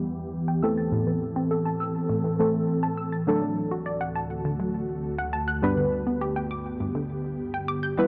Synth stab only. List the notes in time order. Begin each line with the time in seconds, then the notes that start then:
Already playing: E3 G3 B3 G4
0.62 E3 A3 C4 A4
2.39 E3 A3 C4 A4
3.27 F#3 A3 D4 A4
5.62 G3 B3 D4 B4
7.97 G3 B3 E4 B4